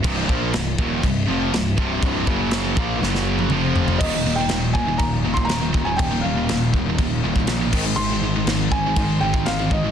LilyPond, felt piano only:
\new Staff \with { instrumentName = "Felt piano" } { \time 4/4 \key ees \major \tempo 4 = 121 r1 | r1 | ees''8. g''8. aes''8 bes''8. c'''16 bes''8. aes''16 | g''8 f''2. r8 |
c'''4. aes''4 g''8 f''8 ees''8 | }